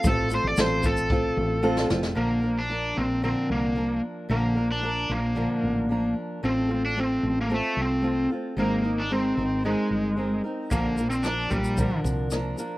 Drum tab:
SH |x-x-x-xx--------|----------------|----------------|----------------|
SD |----o--------ooo|----------------|----------------|----------------|
BD |o-----o-o-------|----------------|----------------|----------------|

SH |----------------|x-xxx-xxx-x-x-x-|
SD |----------------|----r-------r---|
BD |----------------|o-----o-o-o-----|